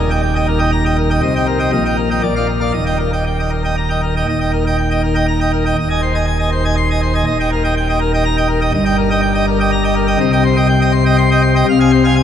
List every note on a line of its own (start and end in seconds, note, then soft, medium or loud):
0.00 1.19 D#1 medium
0.00 1.19 D#2 medium
0.00 0.10 A#4 medium
0.11 0.22 D#5 medium
0.11 0.21 G5 medium
0.23 0.34 G5 medium
0.35 0.46 D#5 medium
0.35 0.46 G5 medium
0.48 0.59 A#4 medium
0.59 0.70 D#5 medium
0.59 0.70 G5 medium
0.72 0.84 A#5 loud
0.85 0.96 D#5 medium
0.85 0.96 G5 medium
0.98 1.09 A#4 medium
1.10 1.20 D#5 medium
1.10 1.21 G5 medium
1.22 1.71 C2 medium
1.22 1.71 C3 medium
1.22 1.34 D#5 medium
1.36 1.46 D#5 medium
1.36 1.46 G5 medium
1.47 1.59 A#4 medium
1.59 1.70 D#5 medium
1.59 1.71 G5 medium
1.72 2.21 A#1 medium
1.72 2.21 A#2 medium
1.72 1.83 D#5 medium
1.85 1.96 D#5 medium
1.85 1.96 G5 medium
1.97 2.09 A#4 medium
2.10 2.21 D#5 medium
2.10 2.21 G5 medium
2.23 2.72 A#1 medium
2.23 2.72 A#2 medium
2.23 2.34 D5 medium
2.36 2.47 D5 medium
2.36 2.47 F5 medium
2.48 2.60 A#4 medium
2.61 2.72 D5 medium
2.61 2.72 F5 medium
2.73 4.23 D#1 medium
2.73 4.24 D#2 medium
2.73 2.84 D#5 medium
2.86 2.97 D#5 soft
2.86 2.97 G5 medium
2.99 3.11 A#4 medium
3.13 3.24 D#5 soft
3.13 3.24 G5 medium
3.27 3.37 G5 medium
3.39 3.50 D#5 medium
3.39 3.50 G5 medium
3.51 3.63 A#4 medium
3.64 3.75 D#5 soft
3.64 3.75 G5 soft
3.77 3.88 A#5 medium
3.90 4.01 D#5 medium
3.90 4.01 G5 medium
4.03 4.14 A#4 medium
4.16 4.26 D#5 soft
4.16 4.27 G5 medium
4.28 5.74 D#1 medium
4.28 5.74 D#2 medium
4.28 4.39 D#5 medium
4.41 4.51 D#5 medium
4.41 4.51 G5 medium
4.53 4.64 A#4 medium
4.67 4.77 D#5 medium
4.67 4.76 G5 medium
4.78 4.89 G5 medium
4.91 5.01 D#5 medium
4.91 5.01 G5 medium
5.04 5.14 A#4 medium
5.15 5.26 D#5 medium
5.15 5.26 G5 medium
5.28 5.39 A#5 loud
5.41 5.51 D#5 medium
5.41 5.51 G5 medium
5.53 5.64 A#4 medium
5.66 5.76 D#5 medium
5.66 5.76 G5 medium
5.78 7.22 D#1 medium
5.78 7.22 D#2 medium
5.78 5.88 D#5 medium
5.90 6.00 D#5 medium
5.90 6.00 G#5 medium
6.02 6.13 C5 medium
6.15 6.25 D#5 medium
6.15 6.25 G#5 medium
6.27 6.37 G#5 medium
6.39 6.50 D#5 medium
6.39 6.50 G#5 medium
6.52 6.63 C5 medium
6.65 6.75 D#5 medium
6.65 6.75 G#5 medium
6.77 6.88 C6 loud
6.91 7.00 D#5 medium
6.91 7.01 G#5 medium
7.03 7.13 C5 medium
7.15 7.25 D#5 medium
7.15 7.25 G#5 medium
7.26 8.70 D#1 medium
7.26 8.69 D#2 medium
7.26 7.37 D#5 medium
7.40 7.50 D#5 medium
7.40 7.50 G5 medium
7.52 7.62 A#4 medium
7.64 7.74 D#5 medium
7.64 7.74 G5 medium
7.77 7.87 G5 medium
7.89 7.99 D#5 medium
7.89 7.99 G5 medium
8.01 8.11 A#4 medium
8.14 8.23 D#5 medium
8.14 8.24 G5 medium
8.25 8.36 A#5 loud
8.37 8.47 D#5 medium
8.37 8.47 G5 medium
8.49 8.60 A#4 medium
8.61 8.72 D#5 medium
8.61 8.72 G5 medium
8.73 10.17 G1 loud
8.73 10.16 G2 medium
8.73 8.84 D#5 medium
8.86 8.96 D#5 medium
8.86 8.96 G5 medium
8.98 9.09 A#4 medium
9.10 9.21 D#5 medium
9.10 9.20 G5 medium
9.22 9.32 G5 medium
9.34 9.45 D#5 medium
9.34 9.45 G5 medium
9.48 9.58 A#4 medium
9.60 9.70 D#5 medium
9.60 9.70 G5 medium
9.72 9.83 A#5 loud
9.84 9.94 D#5 medium
9.84 9.95 G5 medium
9.96 10.07 A#4 medium
10.08 10.18 D#5 medium
10.08 10.18 G5 medium
10.20 11.64 C2 loud
10.20 11.64 C3 medium
10.20 10.31 D#5 medium
10.33 10.43 D#5 medium
10.33 10.43 G5 medium
10.45 10.56 C5 medium
10.56 10.67 D#5 medium
10.56 10.66 G5 medium
10.68 10.80 G5 medium
10.81 10.92 D#5 medium
10.81 10.92 G5 loud
10.92 11.04 C5 medium
11.06 11.16 D#5 medium
11.06 11.16 G5 medium
11.18 11.29 C6 loud
11.31 11.42 D#5 medium
11.31 11.42 G5 medium
11.42 11.54 C5 medium
11.55 11.66 D#5 medium
11.55 11.66 G5 medium
11.69 12.23 C2 loud
11.69 12.23 C3 loud
11.69 11.78 F5 medium
11.80 11.91 F5 medium
11.80 11.91 G#5 medium
11.92 12.03 C5 medium
12.05 12.15 F5 medium
12.05 12.14 G#5 medium
12.16 12.23 G#5 medium